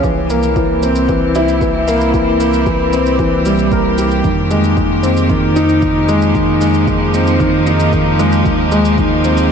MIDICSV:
0, 0, Header, 1, 5, 480
1, 0, Start_track
1, 0, Key_signature, -4, "minor"
1, 0, Tempo, 526316
1, 33, Time_signature, 4, 2, 24, 8
1, 8681, End_track
2, 0, Start_track
2, 0, Title_t, "String quartet"
2, 0, Program_c, 0, 48
2, 0, Note_on_c, 0, 58, 75
2, 0, Note_on_c, 0, 67, 71
2, 321, Note_on_c, 0, 64, 72
2, 428, Note_on_c, 0, 60, 80
2, 3869, Note_on_c, 0, 53, 80
2, 3870, Note_off_c, 0, 64, 0
2, 4148, Note_on_c, 0, 63, 71
2, 4986, Note_off_c, 0, 60, 0
2, 8681, Note_off_c, 0, 53, 0
2, 8681, Note_off_c, 0, 58, 0
2, 8681, Note_off_c, 0, 63, 0
2, 8681, Note_off_c, 0, 67, 0
2, 8681, End_track
3, 0, Start_track
3, 0, Title_t, "Grand piano"
3, 0, Program_c, 1, 0
3, 0, Control_c, 1, 64, 127
3, 35, Note_on_c, 1, 52, 79
3, 46, Control_c, 1, 64, 0
3, 171, Note_off_c, 1, 52, 0
3, 203, Control_c, 1, 64, 127
3, 275, Note_on_c, 1, 58, 75
3, 502, Note_off_c, 1, 58, 0
3, 515, Note_on_c, 1, 52, 69
3, 651, Note_off_c, 1, 52, 0
3, 754, Note_on_c, 1, 60, 71
3, 890, Note_off_c, 1, 60, 0
3, 994, Note_on_c, 1, 52, 88
3, 1222, Note_off_c, 1, 52, 0
3, 1236, Note_on_c, 1, 64, 96
3, 1462, Note_off_c, 1, 64, 0
3, 1474, Note_on_c, 1, 52, 68
3, 1701, Note_off_c, 1, 52, 0
3, 1711, Note_on_c, 1, 58, 91
3, 1940, Note_off_c, 1, 58, 0
3, 1949, Note_on_c, 1, 52, 82
3, 2087, Note_off_c, 1, 52, 0
3, 2186, Note_on_c, 1, 58, 75
3, 2417, Note_off_c, 1, 58, 0
3, 2430, Note_on_c, 1, 52, 70
3, 2568, Note_off_c, 1, 52, 0
3, 2671, Note_on_c, 1, 60, 70
3, 2808, Note_off_c, 1, 60, 0
3, 2912, Note_on_c, 1, 52, 86
3, 3140, Note_off_c, 1, 52, 0
3, 3149, Note_on_c, 1, 55, 70
3, 3288, Note_off_c, 1, 55, 0
3, 3392, Note_on_c, 1, 70, 67
3, 3620, Note_off_c, 1, 70, 0
3, 3630, Note_on_c, 1, 67, 67
3, 3859, Note_off_c, 1, 67, 0
3, 3871, Note_on_c, 1, 51, 77
3, 3884, Control_c, 1, 64, 0
3, 4009, Note_off_c, 1, 51, 0
3, 4036, Control_c, 1, 64, 127
3, 4111, Note_on_c, 1, 56, 77
3, 4340, Note_off_c, 1, 56, 0
3, 4351, Note_on_c, 1, 51, 66
3, 4488, Note_off_c, 1, 51, 0
3, 4586, Note_on_c, 1, 60, 68
3, 4726, Note_off_c, 1, 60, 0
3, 4830, Note_on_c, 1, 51, 89
3, 5059, Note_off_c, 1, 51, 0
3, 5070, Note_on_c, 1, 63, 98
3, 5299, Note_off_c, 1, 63, 0
3, 5312, Note_on_c, 1, 51, 69
3, 5540, Note_off_c, 1, 51, 0
3, 5550, Note_on_c, 1, 56, 91
3, 5779, Note_off_c, 1, 56, 0
3, 5789, Note_on_c, 1, 51, 79
3, 5927, Note_off_c, 1, 51, 0
3, 6030, Note_on_c, 1, 56, 79
3, 6260, Note_off_c, 1, 56, 0
3, 6269, Note_on_c, 1, 51, 66
3, 6408, Note_off_c, 1, 51, 0
3, 6513, Note_on_c, 1, 60, 72
3, 6649, Note_off_c, 1, 60, 0
3, 6748, Note_on_c, 1, 51, 99
3, 6978, Note_off_c, 1, 51, 0
3, 6990, Note_on_c, 1, 63, 95
3, 7219, Note_off_c, 1, 63, 0
3, 7230, Note_on_c, 1, 51, 73
3, 7459, Note_off_c, 1, 51, 0
3, 7471, Note_on_c, 1, 56, 96
3, 7700, Note_off_c, 1, 56, 0
3, 7709, Note_on_c, 1, 51, 79
3, 7724, Control_c, 1, 64, 0
3, 7847, Note_off_c, 1, 51, 0
3, 7886, Control_c, 1, 64, 127
3, 7950, Note_on_c, 1, 56, 80
3, 8179, Note_off_c, 1, 56, 0
3, 8192, Note_on_c, 1, 51, 73
3, 8329, Note_off_c, 1, 51, 0
3, 8432, Note_on_c, 1, 60, 72
3, 8569, Note_off_c, 1, 60, 0
3, 8681, End_track
4, 0, Start_track
4, 0, Title_t, "Sub bass"
4, 0, Program_c, 2, 38
4, 33, Note_on_c, 2, 36, 82
4, 3849, Note_off_c, 2, 36, 0
4, 3871, Note_on_c, 2, 41, 91
4, 7688, Note_off_c, 2, 41, 0
4, 7711, Note_on_c, 2, 39, 88
4, 8681, Note_off_c, 2, 39, 0
4, 8681, End_track
5, 0, Start_track
5, 0, Title_t, "Drums"
5, 32, Note_on_c, 9, 36, 85
5, 33, Note_on_c, 9, 82, 27
5, 123, Note_off_c, 9, 36, 0
5, 125, Note_off_c, 9, 82, 0
5, 272, Note_on_c, 9, 82, 64
5, 363, Note_off_c, 9, 82, 0
5, 391, Note_on_c, 9, 82, 36
5, 482, Note_off_c, 9, 82, 0
5, 511, Note_on_c, 9, 36, 100
5, 513, Note_on_c, 9, 82, 28
5, 602, Note_off_c, 9, 36, 0
5, 604, Note_off_c, 9, 82, 0
5, 754, Note_on_c, 9, 82, 67
5, 845, Note_off_c, 9, 82, 0
5, 872, Note_on_c, 9, 82, 38
5, 963, Note_off_c, 9, 82, 0
5, 991, Note_on_c, 9, 82, 27
5, 992, Note_on_c, 9, 36, 97
5, 1082, Note_off_c, 9, 82, 0
5, 1083, Note_off_c, 9, 36, 0
5, 1231, Note_on_c, 9, 82, 64
5, 1322, Note_off_c, 9, 82, 0
5, 1353, Note_on_c, 9, 82, 38
5, 1444, Note_off_c, 9, 82, 0
5, 1471, Note_on_c, 9, 36, 90
5, 1474, Note_on_c, 9, 82, 29
5, 1562, Note_off_c, 9, 36, 0
5, 1566, Note_off_c, 9, 82, 0
5, 1714, Note_on_c, 9, 82, 67
5, 1805, Note_off_c, 9, 82, 0
5, 1834, Note_on_c, 9, 82, 34
5, 1926, Note_off_c, 9, 82, 0
5, 1950, Note_on_c, 9, 36, 94
5, 1954, Note_on_c, 9, 82, 29
5, 2041, Note_off_c, 9, 36, 0
5, 2045, Note_off_c, 9, 82, 0
5, 2191, Note_on_c, 9, 82, 67
5, 2282, Note_off_c, 9, 82, 0
5, 2311, Note_on_c, 9, 82, 36
5, 2402, Note_off_c, 9, 82, 0
5, 2429, Note_on_c, 9, 36, 91
5, 2430, Note_on_c, 9, 82, 28
5, 2520, Note_off_c, 9, 36, 0
5, 2521, Note_off_c, 9, 82, 0
5, 2671, Note_on_c, 9, 82, 68
5, 2762, Note_off_c, 9, 82, 0
5, 2793, Note_on_c, 9, 82, 38
5, 2885, Note_off_c, 9, 82, 0
5, 2909, Note_on_c, 9, 36, 93
5, 2914, Note_on_c, 9, 82, 27
5, 3000, Note_off_c, 9, 36, 0
5, 3006, Note_off_c, 9, 82, 0
5, 3150, Note_on_c, 9, 82, 63
5, 3241, Note_off_c, 9, 82, 0
5, 3272, Note_on_c, 9, 82, 37
5, 3363, Note_off_c, 9, 82, 0
5, 3389, Note_on_c, 9, 36, 94
5, 3393, Note_on_c, 9, 82, 28
5, 3481, Note_off_c, 9, 36, 0
5, 3484, Note_off_c, 9, 82, 0
5, 3631, Note_on_c, 9, 82, 69
5, 3722, Note_off_c, 9, 82, 0
5, 3750, Note_on_c, 9, 82, 36
5, 3842, Note_off_c, 9, 82, 0
5, 3869, Note_on_c, 9, 36, 96
5, 3870, Note_on_c, 9, 82, 30
5, 3960, Note_off_c, 9, 36, 0
5, 3962, Note_off_c, 9, 82, 0
5, 4111, Note_on_c, 9, 82, 65
5, 4202, Note_off_c, 9, 82, 0
5, 4230, Note_on_c, 9, 82, 35
5, 4321, Note_off_c, 9, 82, 0
5, 4349, Note_on_c, 9, 36, 95
5, 4354, Note_on_c, 9, 82, 30
5, 4441, Note_off_c, 9, 36, 0
5, 4445, Note_off_c, 9, 82, 0
5, 4592, Note_on_c, 9, 82, 69
5, 4683, Note_off_c, 9, 82, 0
5, 4714, Note_on_c, 9, 82, 38
5, 4805, Note_off_c, 9, 82, 0
5, 4830, Note_on_c, 9, 36, 102
5, 4834, Note_on_c, 9, 82, 28
5, 4921, Note_off_c, 9, 36, 0
5, 4926, Note_off_c, 9, 82, 0
5, 5073, Note_on_c, 9, 82, 65
5, 5165, Note_off_c, 9, 82, 0
5, 5191, Note_on_c, 9, 82, 42
5, 5282, Note_off_c, 9, 82, 0
5, 5309, Note_on_c, 9, 82, 29
5, 5310, Note_on_c, 9, 36, 99
5, 5400, Note_off_c, 9, 82, 0
5, 5402, Note_off_c, 9, 36, 0
5, 5551, Note_on_c, 9, 82, 72
5, 5642, Note_off_c, 9, 82, 0
5, 5671, Note_on_c, 9, 82, 38
5, 5762, Note_off_c, 9, 82, 0
5, 5790, Note_on_c, 9, 36, 96
5, 5793, Note_on_c, 9, 82, 31
5, 5882, Note_off_c, 9, 36, 0
5, 5884, Note_off_c, 9, 82, 0
5, 6031, Note_on_c, 9, 82, 65
5, 6122, Note_off_c, 9, 82, 0
5, 6150, Note_on_c, 9, 82, 39
5, 6241, Note_off_c, 9, 82, 0
5, 6271, Note_on_c, 9, 36, 105
5, 6273, Note_on_c, 9, 82, 30
5, 6362, Note_off_c, 9, 36, 0
5, 6364, Note_off_c, 9, 82, 0
5, 6512, Note_on_c, 9, 82, 74
5, 6603, Note_off_c, 9, 82, 0
5, 6632, Note_on_c, 9, 82, 41
5, 6723, Note_off_c, 9, 82, 0
5, 6751, Note_on_c, 9, 36, 107
5, 6752, Note_on_c, 9, 82, 28
5, 6842, Note_off_c, 9, 36, 0
5, 6843, Note_off_c, 9, 82, 0
5, 6993, Note_on_c, 9, 82, 70
5, 7084, Note_off_c, 9, 82, 0
5, 7112, Note_on_c, 9, 82, 45
5, 7203, Note_off_c, 9, 82, 0
5, 7230, Note_on_c, 9, 36, 102
5, 7231, Note_on_c, 9, 82, 29
5, 7322, Note_off_c, 9, 36, 0
5, 7322, Note_off_c, 9, 82, 0
5, 7473, Note_on_c, 9, 82, 76
5, 7564, Note_off_c, 9, 82, 0
5, 7591, Note_on_c, 9, 82, 40
5, 7682, Note_off_c, 9, 82, 0
5, 7711, Note_on_c, 9, 36, 98
5, 7713, Note_on_c, 9, 82, 30
5, 7802, Note_off_c, 9, 36, 0
5, 7804, Note_off_c, 9, 82, 0
5, 7950, Note_on_c, 9, 82, 73
5, 8041, Note_off_c, 9, 82, 0
5, 8072, Note_on_c, 9, 82, 41
5, 8163, Note_off_c, 9, 82, 0
5, 8190, Note_on_c, 9, 36, 102
5, 8194, Note_on_c, 9, 82, 32
5, 8281, Note_off_c, 9, 36, 0
5, 8285, Note_off_c, 9, 82, 0
5, 8430, Note_on_c, 9, 82, 77
5, 8521, Note_off_c, 9, 82, 0
5, 8549, Note_on_c, 9, 82, 45
5, 8641, Note_off_c, 9, 82, 0
5, 8681, End_track
0, 0, End_of_file